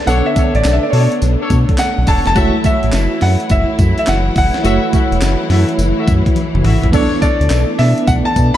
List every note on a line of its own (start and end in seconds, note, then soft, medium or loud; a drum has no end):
0.00 2.32 D3 medium
0.00 6.89 A3 medium
0.00 2.32 B3 medium
0.00 2.32 D4 medium
0.07 0.22 B1 loud
0.07 2.32 B3 medium
0.07 2.32 D4 medium
0.07 0.29 D4 loud
0.07 0.29 A4 loud
0.07 2.33 A4 medium
0.07 0.29 C#5 loud
0.07 2.33 C#5 medium
0.07 0.27 F#5 loud
0.07 closed hi-hat medium
0.07 tambourine medium
0.26 0.56 E5 medium
0.36 0.57 D4 medium
0.36 0.58 A4 medium
0.36 0.58 C#5 medium
0.36 kick medium
0.36 closed hi-hat medium
0.36 tambourine medium
0.55 0.62 A1 loud
0.55 0.72 D5 medium
0.55 closed hi-hat medium
0.64 0.79 B1 medium
0.64 snare loud
0.64 clap medium
0.64 closed hi-hat medium
0.64 tambourine medium
0.73 0.84 E5 medium
0.83 0.90 D5 medium
0.90 1.08 B2 medium
0.90 1.15 D4 medium
0.90 1.15 A4 medium
0.90 1.00 C#5 medium
0.90 1.15 C#5 medium
0.90 open hi-hat medium
1.00 1.12 D5 medium
1.12 closed hi-hat medium
1.22 1.37 B1 loud
1.22 closed hi-hat medium
1.22 tambourine medium
1.40 1.55 D4 medium
1.40 1.56 A4 medium
1.40 1.56 C#5 medium
1.50 1.65 B2 loud
1.50 kick loud
1.50 closed hi-hat medium
1.50 tambourine medium
1.69 kick medium
1.69 closed hi-hat medium
1.78 2.06 F#5 loud
1.78 snare loud
1.78 clap medium
1.78 closed hi-hat medium
1.78 tambourine loud
1.98 2.06 B1 medium
2.07 2.22 E1 medium
2.07 2.29 D4 medium
2.07 2.29 A4 medium
2.07 2.29 C#5 medium
2.07 2.26 A5 loud
2.07 kick loud
2.07 open hi-hat medium
2.07 tambourine medium
2.26 2.34 F1 loud
2.26 2.62 A5 loud
2.26 snare medium
2.26 closed hi-hat medium
2.35 2.51 F#1 loud
2.35 8.57 E3 medium
2.35 6.89 F#3 medium
2.35 2.44 G#3 medium
2.35 4.61 E4 medium
2.35 6.89 E4 medium
2.35 2.57 F#4 loud
2.35 4.61 F#4 medium
2.35 2.57 A4 medium
2.35 4.61 C#5 medium
2.35 2.58 E5 loud
2.35 kick loud
2.35 closed hi-hat medium
2.35 tambourine medium
2.42 4.62 A3 medium
2.64 2.86 F#4 medium
2.64 2.86 A4 medium
2.64 2.86 E5 medium
2.64 3.18 E5 medium
2.64 kick loud
2.64 closed hi-hat medium
2.64 tambourine medium
2.83 2.91 A1 medium
2.83 closed hi-hat medium
2.92 3.08 F#1 loud
2.92 snare loud
2.92 clap medium
2.92 closed hi-hat medium
2.92 tambourine medium
3.21 3.37 F#2 loud
3.21 3.51 F#5 medium
3.21 snare medium
3.21 open hi-hat medium
3.40 closed hi-hat medium
3.49 3.65 F#1 loud
3.49 3.97 E5 medium
3.49 kick medium
3.49 closed hi-hat medium
3.49 tambourine medium
3.79 3.94 F#2 loud
3.79 kick medium
3.79 closed hi-hat medium
3.79 tambourine medium
3.98 4.08 E5 medium
3.98 closed hi-hat medium
4.07 4.30 F#1 medium
4.07 4.35 F#5 medium
4.07 snare loud
4.07 clap medium
4.07 closed hi-hat medium
4.07 tambourine loud
4.36 4.51 F#1 medium
4.36 6.04 F#5 loud
4.36 kick medium
4.36 open hi-hat medium
4.36 tambourine medium
4.54 snare medium
4.54 closed hi-hat medium
4.63 4.79 F#1 loud
4.63 6.89 A3 medium
4.63 6.89 E4 medium
4.63 4.86 F#4 loud
4.63 6.89 F#4 medium
4.63 4.86 A4 loud
4.63 6.90 C#5 medium
4.63 4.86 E5 loud
4.63 closed hi-hat medium
4.63 tambourine medium
4.93 5.15 F#4 medium
4.93 5.15 A4 medium
4.93 5.15 E5 medium
4.93 kick medium
4.93 closed hi-hat medium
4.93 tambourine medium
5.12 5.19 E1 medium
5.12 closed hi-hat medium
5.21 5.36 F#1 loud
5.21 snare loud
5.21 clap loud
5.21 closed hi-hat medium
5.21 tambourine medium
5.50 5.65 F#2 loud
5.50 5.72 F#4 medium
5.50 5.72 A4 medium
5.50 5.72 E5 medium
5.50 snare medium
5.50 open hi-hat medium
5.69 closed hi-hat soft
5.78 5.93 F#1 medium
5.78 closed hi-hat medium
5.78 tambourine medium
5.98 6.13 F#4 medium
5.98 6.13 A4 medium
5.98 6.13 E5 medium
6.08 6.22 F#2 loud
6.08 kick medium
6.08 closed hi-hat medium
6.08 tambourine medium
6.26 kick medium
6.26 closed hi-hat medium
6.36 closed hi-hat medium
6.36 high tom medium
6.54 6.62 F#1 medium
6.54 mid tom medium
6.64 6.79 A1 medium
6.64 6.86 F#4 medium
6.64 6.86 A4 medium
6.64 6.86 E5 medium
6.64 mid tom loud
6.64 open hi-hat medium
6.83 6.91 A#1 medium
6.83 closed hi-hat medium
6.83 floor tom medium
6.92 7.08 B1 loud
6.92 8.57 A3 medium
6.92 8.57 B3 medium
6.92 8.57 D4 medium
6.92 7.15 D4 loud
6.92 8.57 A4 medium
6.92 7.15 A4 medium
6.92 7.15 C#5 loud
6.92 8.57 D5 medium
6.92 kick loud
6.92 crash medium
6.92 tambourine medium
7.22 7.43 D4 medium
7.22 7.43 A4 medium
7.22 7.43 C#5 medium
7.22 7.81 D5 loud
7.22 kick medium
7.22 closed hi-hat medium
7.22 tambourine medium
7.41 7.48 D2 medium
7.41 closed hi-hat medium
7.50 7.65 B1 medium
7.50 snare loud
7.50 clap medium
7.50 closed hi-hat medium
7.50 tambourine medium
7.79 7.94 B2 loud
7.79 8.08 E5 medium
7.79 snare medium
7.79 open hi-hat medium
7.98 closed hi-hat medium
8.07 8.22 B1 loud
8.07 8.12 F#5 loud
8.07 kick medium
8.07 closed hi-hat medium
8.07 tambourine medium
8.25 8.55 A5 loud
8.36 8.51 B2 medium
8.36 kick medium
8.36 closed hi-hat medium
8.36 tambourine medium